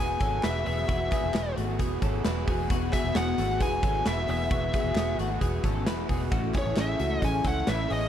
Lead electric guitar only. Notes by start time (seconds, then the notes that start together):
0.00 G#5
0.44 E5
0.67 E5
2.93 E5
3.16 F#5
3.62 G#5
4.07 E5
4.31 E5
6.58 C#5
6.81 E5
7.25 G#5
7.48 F#5
7.69 E5
7.92 D#5